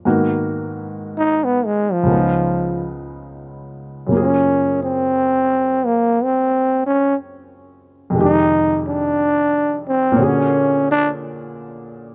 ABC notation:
X:1
M:4/4
L:1/16
Q:"Swing" 1/4=59
K:Gblyd
V:1 name="Trombone"
z4 E _C A, F,4 z4 z | D2 C4 B,2 C2 D2 z4 | E2 =D4 C2 ^C2 D2 z4 |]
V:2 name="Grand piano"
[A,,E,B,_CG]8 [D,,D,CEF]8 | [G,,D,B,FA]16 | [F,,C,E,A,=G]8 [B,,=D,B,^FA^c]8 |]